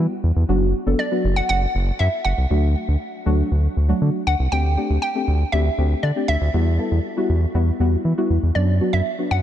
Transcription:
Already playing: G3 B3 E4 F#4
0.23 E2
0.36 E2
0.48 F#1 F#3 B3 D4 F#4
0.86 F#1 F#3 B3 D4 A4
0.99 D5
1.11 F#3 B3 D4 F#4
1.24 F#1
1.36 F#5
1.49 F#1 F#5
1.75 F#1
1.99 F#2 E5
2.25 F#1 F#5
2.38 C2
2.50 D2 F#3 A3 D4 F#4
2.88 D2
3.25 D2 F#3 A3 D4 F#4
3.51 D2
3.77 D2
3.88 F#3 A3 D4 F#4
4.02 D3
4.27 D2 F#5
4.39 C2
4.52 D2 A3 C4 D4 G4 G5
4.77 A3 C4 D4 G4
4.90 D2
5.02 G5
5.15 A3 C4 D4 G4
5.28 D2
5.52 D2 A3 C4 D4 G4 E5
5.78 D2 A3 C4 D4 G4
6.03 D3 D5
6.16 A3 C4 D4 G4
6.28 D2 E5
6.41 D2
6.53 E2 G3 B3 E4 F#4
6.78 G3 B3 E4 A4
6.91 E2
7.17 G3 B3 E4 F#4
7.29 E2
7.54 E2 G3 B3 E4 F#4
7.80 E2 G3 B3 E4 F#4
8.05 E3
8.17 G3 B3 E4 F#4
8.30 E2
8.43 E2
8.55 F#2 F#3 B3 D4 F#4 D5
8.81 F#3 B3 D4 F#4
8.93 F#2 E5
9.18 F#3 B3 D4 F#4
9.31 F#2 F#5

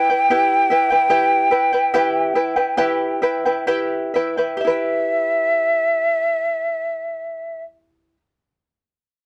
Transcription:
Already playing: E4 E5 G5
0.10 E4 B4 G5
0.30 E4 G4 B4 E5 G5
0.70 E4 B4 E5 G5
0.91 E4 B4 G5
1.09 E4 G4 B4 E5 G5
1.51 E4 B4 E5 G5
1.73 E4 B4 G5
1.94 E4 G4 B4 E5 G5
2.35 E4 B4 E5 G5
2.56 E4 B4 G5
2.77 E4 G4 B4 E5 G5
3.22 E4 B4 E5 G5
3.46 E4 B4 G5
3.67 E4 G4 B4 E5 G5
4.14 E4 B4 E5 G5
4.37 E4 B4 G5
4.57 G4 E5
4.65 E4 B4
4.70 G5

